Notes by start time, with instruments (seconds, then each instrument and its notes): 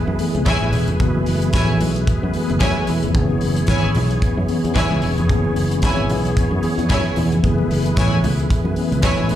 Already playing: tine electric piano E3 A3 B3 G#4, tonewheel organ A3 E4 G#4 B4
0.07 fingered electric bass F#2, muted conga
0.19 tine electric piano E3 A3 B3 G#4, open hi-hat
0.35 fingered electric bass C#2, closed hi-hat, high conga
0.46 string section E4 C#5 G#5, kick, snare, closed hi-hat, muted conga
0.61 fingered electric bass A1, muted conga
0.72 fingered electric bass E1, open hi-hat, low conga
0.88 fingered electric bass F1, closed hi-hat, high conga
1.00 fingered electric bass F#1, tine electric piano E3 A3 B3 F#4, kick, closed hi-hat
1.14 high conga
1.26 fingered electric bass F#1, open hi-hat
1.42 closed hi-hat
1.53 fingered electric bass A1, string section E4 C#5 G#5, kick, snare, closed hi-hat, muted conga
1.69 muted conga, high conga, low conga
1.80 fingered electric bass B1, open hi-hat, low conga
1.96 closed hi-hat
2.07 muted fingered electric bass stroke, kick, closed hi-hat, muted conga
2.23 fingered electric bass F#2
2.33 tine electric piano E3 G#3 B3 G#4, open hi-hat
2.42 tine electric piano A3
2.50 fingered electric bass F#1, closed hi-hat, high conga
2.60 fingered electric bass F#2, string section E4 C#5 G#5, kick, snare, closed hi-hat, muted conga
2.78 muted conga
2.87 fingered electric bass E2, open hi-hat, low conga
3.03 fingered electric bass F1, closed hi-hat, high conga
3.14 fingered electric bass F#1, tine electric piano D#3 B3 C#4 G#4, tonewheel organ B3 C#5, kick, closed hi-hat, muted conga
3.22 tine electric piano E3
3.30 high conga
3.41 fingered electric bass F#1, open hi-hat
3.56 closed hi-hat
3.67 fingered electric bass G#1, string section E4 C#5 G#5, kick, snare, closed hi-hat
3.84 high conga, low conga
3.95 fingered electric bass B1, open hi-hat, low conga
4.11 closed hi-hat
4.22 muted fingered electric bass stroke, kick, closed hi-hat
4.37 fingered electric bass F#2
4.48 tine electric piano E3 B3 C#4 G#4, open hi-hat
4.64 fingered electric bass E2, closed hi-hat, high conga
4.75 string section E4 C#5 G#5, kick, snare, closed hi-hat
4.91 fingered electric bass C#2
5.02 fingered electric bass E1, open hi-hat, low conga
5.18 fingered electric bass F1, closed hi-hat, high conga
5.29 fingered electric bass F#1, tine electric piano E3 B3 C#4 G#4, kick, closed hi-hat
5.45 high conga
5.56 fingered electric bass F#1, open hi-hat
5.71 closed hi-hat
5.82 fingered electric bass G#1, string section E4 C#5 G#5, kick, snare, closed hi-hat
5.99 muted conga, high conga, low conga
6.09 fingered electric bass B1, open hi-hat, low conga
6.25 closed hi-hat
6.37 muted fingered electric bass stroke, kick, closed hi-hat, muted conga
6.51 fingered electric bass F#2, muted conga
6.63 tine electric piano E3 B3 C#4 G#4, open hi-hat
6.78 fingered electric bass E2, closed hi-hat, high conga
6.90 fingered electric bass F#2, string section E4 C#5 G#5, kick, snare, closed hi-hat
7.07 muted conga
7.16 fingered electric bass E2, open hi-hat, low conga
7.32 fingered electric bass F1, closed hi-hat, high conga
7.43 fingered electric bass F#1, tine electric piano E3 A3 B3 G#4, tonewheel organ A3 G#4 B4, kick, closed hi-hat
7.58 muted conga, high conga
7.71 fingered electric bass F#1, open hi-hat
7.86 closed hi-hat
7.96 fingered electric bass A1, string section E4 C#5 G#5, kick, snare, closed hi-hat
8.12 high conga, low conga
8.23 fingered electric bass C#2, open hi-hat, low conga
8.40 closed hi-hat
8.50 kick, closed hi-hat
8.64 fingered electric bass F#2, muted conga
8.76 tine electric piano E3 A3 B3 C#4, open hi-hat
8.92 fingered electric bass C#2, closed hi-hat, high conga
9.02 string section E4 C#5 G#5, kick, snare, closed hi-hat
9.19 fingered electric bass A1, muted conga
9.29 fingered electric bass E1, open hi-hat, low conga